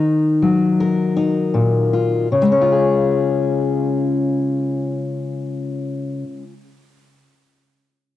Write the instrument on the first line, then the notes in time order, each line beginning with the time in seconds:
steel-string acoustic guitar
Already playing: D#3 D#4
0.42 F#3
0.80 A#4
1.16 D#4
1.54 A#2
1.93 F4
2.32 C#3
2.42 G#3
2.52 C#4
2.61 F4
2.72 G#4